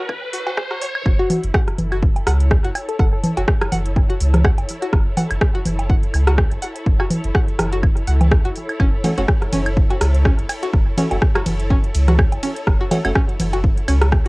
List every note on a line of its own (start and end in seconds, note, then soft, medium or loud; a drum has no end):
0.00 1.06 F#3 medium
0.00 1.05 E4 medium
0.00 1.06 A4 medium
0.00 1.06 C#5 medium
0.00 riser medium
0.09 kick loud
0.09 high woodblock medium
0.33 0.39 F#4 medium
0.33 open hi-hat loud
0.47 0.49 F#4 loud
0.47 low woodblock soft
0.57 kick loud
0.57 cross-stick loud
0.71 0.75 F#4 medium
0.71 cross-stick medium
0.82 0.85 C#5 medium
0.82 open hi-hat medium
0.95 high woodblock medium
1.06 1.14 F#1 loud
1.06 14.28 E4 medium
1.06 kick loud
1.06 high woodblock medium
1.19 1.40 F#4 medium
1.19 1.24 F#4 medium
1.30 open hi-hat medium
1.30 low conga loud
1.44 1.50 F#1 loud
1.44 closed hi-hat medium
1.54 1.60 F#5 medium
1.54 kick loud
1.54 cross-stick loud
1.54 low woodblock soft
1.68 cross-stick soft
1.68 closed hi-hat soft
1.76 2.08 F#1 loud
1.76 14.28 A4 medium
1.76 open hi-hat medium
1.76 low conga medium
1.92 1.96 F#4 medium
1.92 closed hi-hat medium
1.92 high woodblock medium
2.03 kick loud
2.16 closed hi-hat soft
2.16 low woodblock soft
2.27 2.56 C#2 loud
2.27 14.28 C#5 medium
2.27 2.32 F#5 medium
2.27 cross-stick medium
2.27 open hi-hat medium
2.40 closed hi-hat medium
2.51 kick loud
2.51 cross-stick loud
2.64 2.71 F#1 medium
2.64 2.69 F#4 medium
2.64 closed hi-hat soft
2.75 open hi-hat medium
2.75 high woodblock medium
2.75 low woodblock soft
2.89 2.95 A4 medium
2.89 closed hi-hat medium
2.99 3.08 F#1 loud
2.99 3.08 A4 medium
2.99 3.05 F#5 medium
2.99 kick loud
2.99 cross-stick soft
3.13 3.20 A4 medium
3.23 3.32 A4 medium
3.23 open hi-hat loud
3.23 low conga loud
3.37 3.44 F#1 loud
3.37 3.42 F#4 medium
3.37 closed hi-hat medium
3.37 low woodblock soft
3.48 kick loud
3.48 cross-stick loud
3.61 cross-stick medium
3.61 closed hi-hat soft
3.61 high woodblock medium
3.72 4.02 F#1 loud
3.72 3.78 F#5 medium
3.72 open hi-hat medium
3.72 low conga medium
3.85 closed hi-hat medium
3.96 kick loud
3.96 low woodblock soft
4.10 4.14 F#4 medium
4.10 closed hi-hat soft
4.20 4.50 C#2 loud
4.20 open hi-hat loud
4.34 cross-stick soft
4.34 closed hi-hat medium
4.34 low conga loud
4.44 4.50 F#5 medium
4.44 kick loud
4.44 cross-stick loud
4.44 high woodblock medium
4.58 4.65 F#1 medium
4.58 closed hi-hat soft
4.58 low woodblock soft
4.69 open hi-hat loud
4.82 4.87 F#4 medium
4.82 closed hi-hat medium
4.93 5.01 F#1 loud
4.93 kick loud
4.93 cross-stick medium
5.17 5.23 F#5 medium
5.17 open hi-hat loud
5.17 low conga loud
5.17 low woodblock soft
5.31 5.37 F#1 loud
5.31 closed hi-hat medium
5.31 high woodblock medium
5.41 kick loud
5.41 cross-stick loud
5.55 5.59 F#4 medium
5.55 closed hi-hat soft
5.65 5.95 F#1 loud
5.65 open hi-hat loud
5.65 low conga medium
5.79 closed hi-hat medium
5.79 low woodblock soft
5.90 5.95 F#5 medium
5.90 kick loud
6.03 closed hi-hat soft
6.14 6.43 C#2 loud
6.14 open hi-hat loud
6.14 high woodblock medium
6.27 6.32 F#4 medium
6.27 cross-stick medium
6.27 closed hi-hat soft
6.38 kick loud
6.38 cross-stick loud
6.38 low woodblock soft
6.51 6.58 F#1 medium
6.51 closed hi-hat soft
6.62 6.68 F#5 medium
6.62 open hi-hat loud
6.76 closed hi-hat medium
6.86 6.95 F#1 loud
6.86 kick loud
7.00 7.04 F#4 medium
7.00 cross-stick soft
7.00 high woodblock medium
7.00 low woodblock soft
7.10 open hi-hat loud
7.10 low conga medium
7.24 7.31 F#1 loud
7.24 closed hi-hat medium
7.35 7.41 F#5 medium
7.35 kick loud
7.35 cross-stick medium
7.48 closed hi-hat soft
7.59 7.89 F#1 loud
7.59 cross-stick medium
7.59 open hi-hat loud
7.59 low conga medium
7.59 low woodblock soft
7.73 7.77 F#4 medium
7.73 closed hi-hat soft
7.83 kick loud
7.83 high woodblock medium
7.97 closed hi-hat soft
8.07 8.37 C#2 loud
8.07 8.13 F#5 medium
8.07 open hi-hat medium
8.21 closed hi-hat medium
8.21 low conga medium
8.21 low woodblock soft
8.32 kick loud
8.32 cross-stick loud
8.32 cross-stick soft
8.45 8.52 F#1 medium
8.45 8.50 F#4 medium
8.45 closed hi-hat soft
8.56 open hi-hat medium
8.69 closed hi-hat medium
8.69 high woodblock medium
8.80 8.88 F#1 loud
8.80 8.89 C#4 medium
8.80 kick loud
8.80 high woodblock medium
9.04 9.12 A3 medium
9.04 9.12 C#4 medium
9.04 9.12 F#4 loud
9.04 open hi-hat medium
9.04 ride medium
9.04 low conga medium
9.18 9.24 F#1 loud
9.18 9.24 A3 medium
9.18 9.24 C#4 medium
9.18 9.24 F#4 loud
9.18 9.22 F#4 medium
9.18 closed hi-hat soft
9.28 kick loud
9.28 cross-stick medium
9.28 low woodblock soft
9.42 cross-stick soft
9.42 closed hi-hat soft
9.52 9.82 F#1 loud
9.52 9.61 C#4 medium
9.52 open hi-hat medium
9.52 ride medium
9.52 low conga medium
9.66 closed hi-hat medium
9.66 high woodblock medium
9.77 kick loud
9.90 9.95 F#4 medium
9.90 closed hi-hat soft
9.90 low woodblock soft
10.01 10.31 C#2 loud
10.01 cross-stick medium
10.01 open hi-hat medium
10.01 ride medium
10.14 closed hi-hat soft
10.25 10.34 C#4 medium
10.25 kick loud
10.25 cross-stick medium
10.39 10.45 F#1 medium
10.39 closed hi-hat soft
10.49 open hi-hat medium
10.49 ride medium
10.49 high woodblock medium
10.49 low woodblock soft
10.63 10.67 F#4 medium
10.63 closed hi-hat medium
10.73 10.82 F#1 loud
10.73 kick loud
10.73 cross-stick soft
10.98 11.09 A3 medium
10.98 11.06 C#4 medium
10.98 11.09 C#4 medium
10.98 11.09 F#4 medium
10.98 open hi-hat medium
10.98 ride medium
10.98 low conga medium
11.11 11.18 F#1 loud
11.11 11.17 A3 medium
11.11 11.17 C#4 medium
11.11 11.17 F#4 medium
11.11 closed hi-hat medium
11.11 low woodblock soft
11.22 kick loud
11.22 cross-stick medium
11.35 11.40 F#4 medium
11.35 cross-stick medium
11.35 closed hi-hat soft
11.35 high woodblock medium
11.46 11.76 F#1 loud
11.46 open hi-hat medium
11.46 ride medium
11.46 low conga medium
11.60 closed hi-hat medium
11.70 11.79 C#4 medium
11.70 kick loud
11.70 low woodblock soft
11.84 closed hi-hat soft
11.94 12.24 C#2 loud
11.94 open hi-hat medium
11.94 ride medium
12.08 12.13 F#4 medium
12.08 cross-stick soft
12.08 closed hi-hat medium
12.08 low conga medium
12.19 kick loud
12.19 cross-stick medium
12.19 high woodblock medium
12.32 12.39 F#1 medium
12.32 closed hi-hat soft
12.32 low woodblock soft
12.43 12.51 C#4 medium
12.43 open hi-hat medium
12.43 ride medium
12.56 closed hi-hat medium
12.67 12.76 F#1 loud
12.67 kick loud
12.67 cross-stick medium
12.81 12.85 F#4 medium
12.91 12.99 A3 medium
12.91 12.99 C#4 medium
12.91 12.99 F#4 loud
12.91 open hi-hat medium
12.91 ride medium
12.91 low conga medium
12.91 low woodblock soft
13.05 13.11 F#1 loud
13.05 13.11 A3 loud
13.05 13.11 C#4 medium
13.05 13.11 F#4 loud
13.05 closed hi-hat medium
13.05 high woodblock medium
13.15 13.24 C#4 medium
13.15 kick loud
13.15 cross-stick medium
13.29 closed hi-hat soft
13.40 13.69 F#1 loud
13.40 open hi-hat medium
13.40 ride medium
13.40 low conga medium
13.53 13.58 F#4 medium
13.53 closed hi-hat medium
13.53 low woodblock soft
13.64 kick loud
13.77 closed hi-hat soft
13.88 14.18 C#2 loud
13.88 13.97 C#4 medium
13.88 open hi-hat medium
13.88 ride medium
13.88 high woodblock medium
14.02 cross-stick medium
14.02 closed hi-hat medium
14.12 kick loud
14.12 cross-stick medium
14.12 low woodblock soft